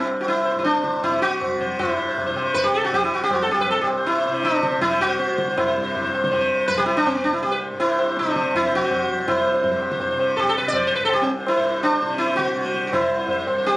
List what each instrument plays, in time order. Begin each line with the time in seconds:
Already playing: tanpura G2 C3
0.02 tanpura C2, tabla na
0.21 sitar F#4
0.25 sitar E4 C5, tabla na
0.45 sitar C5, tabla na
0.55 tanpura G2, sitar E4
0.63 sitar D4 C5, tabla te
0.74 tabla te
0.84 sitar C5, tabla ke
0.94 tabla te
1.03 tanpura C3, sitar E4 C5, tabla na, tabla ge
1.22 sitar F#4 C5, tabla te
1.41 tabla na, tabla ge
1.55 tanpura C3
1.61 sitar C5, tabla ge
1.79 tanpura G2, sitar E4, tabla na, tabla ge
1.88 sitar C5
1.97 sitar C5
2.09 sitar C5
2.18 tabla tin, tabla ge
2.26 tanpura C3, sitar C5
2.36 sitar C5, tabla na
2.46 sitar C5
2.54 sitar B4, tabla tin, tabla ge
2.64 sitar G4
2.74 sitar A4
2.80 tanpura C3, sitar F#4
2.93 sitar G4, tabla tin, tabla ge
3.04 sitar E4
3.14 sitar F#4
3.24 sitar G4
3.29 tanpura C2, sitar F#4, tabla na, tabla ge
3.42 sitar A4
3.49 sitar G4, tabla te
3.59 sitar B4, tabla ge
3.68 sitar A4, tabla na
3.79 tanpura G2, sitar G4
3.88 tabla na
3.98 sitar C5
4.06 sitar E4, tabla te
4.18 sitar C5
4.26 tanpura C3, sitar C5, tabla te
4.34 sitar C5
4.43 sitar D4, tabla te
4.54 tabla te
4.63 sitar C5, tabla ke
4.71 sitar C5, tabla te
4.77 tanpura C3
4.81 sitar E4, tabla na, tabla ge
4.91 sitar C5
5.00 sitar F#4, tabla ge
5.09 sitar C5
5.19 sitar C5, tabla te
5.26 tanpura C2, sitar C5, tabla te
5.37 sitar C5, tabla ke
5.48 sitar C5, tabla te
5.57 sitar E4, tabla na, tabla ge
5.67 sitar C5
5.76 tanpura G2
5.83 sitar C5
5.94 sitar C5, tabla tin, tabla ge
6.03 sitar C5
6.14 sitar C5, tabla na
6.24 tanpura C3, sitar C5, tabla ke
6.32 sitar C5, tabla tin, tabla ge
6.41 sitar C5
6.59 sitar C5
6.68 sitar B4, tabla tin, tabla ge
6.74 tanpura C3, sitar G4
6.86 sitar E4, tabla na
6.97 sitar D4
7.06 sitar C4, tabla na, tabla ge
7.14 sitar B3
7.23 tanpura C2, sitar D4, tabla ge
7.33 sitar E4
7.43 sitar G4, tabla te
7.51 sitar B4
7.61 sitar C5, tabla te
7.71 tanpura G2
7.80 sitar E4, tabla na
7.89 sitar C5
7.99 sitar C5, tabla na
8.09 sitar C5
8.17 tanpura C3, sitar D4, tabla te
8.26 sitar C5, tabla te
8.36 sitar C5, tabla ke
8.46 tabla te
8.55 sitar E4, tabla na, tabla ge
8.66 tanpura C3, sitar C5
8.73 sitar F#4, tabla ge
8.85 sitar C5
8.91 sitar C5, tabla na, tabla ge
9.03 sitar C5
9.09 sitar C5, tabla ge
9.17 tanpura C2, sitar C5
9.28 sitar E4, tabla na, tabla ge
9.37 sitar C5
9.47 sitar C5
9.54 sitar C5
9.62 tanpura G2, sitar C5, tabla tin, tabla ge
9.71 sitar C5
9.82 tabla na
9.91 sitar C5, tabla ke
10.00 sitar C5, tabla tin, tabla ge
10.11 tanpura C3, sitar C5
10.19 sitar C5, tabla na
10.37 sitar G4 A4, tabla tin, tabla ge
10.49 sitar A4
10.58 tanpura C3, sitar B4
10.68 sitar D5
10.73 sitar C5, tabla na, tabla ge
10.87 sitar C5, tabla te
10.95 sitar B4
11.01 tabla ge
11.05 tanpura C2, sitar A4
11.09 tabla na
11.13 sitar G4
11.22 sitar C4
11.40 sitar C5
11.47 sitar E4, tabla na
11.57 tanpura G2, sitar C5
11.65 sitar C5
11.73 sitar C5
11.83 sitar D4, tabla na
11.93 sitar C5
12.01 tanpura C3, sitar C5, tabla ke
12.10 sitar C5
12.18 sitar E4, tabla te
12.27 sitar C5, tabla te
12.36 sitar F#4, tabla ke
12.45 sitar C5, tabla te
12.52 tanpura C3
12.57 tabla te
12.65 sitar C5, tabla te
12.74 sitar C5, tabla ke
12.84 sitar F#4, tabla te
12.93 sitar E4, tabla na, tabla ge
13.00 tanpura C2, sitar C5
13.19 sitar C5
13.28 sitar C5, tabla tin, tabla ge
13.39 sitar C5
13.46 tanpura G2, sitar C5, tabla na
13.58 sitar C5
13.65 sitar G4, tabla te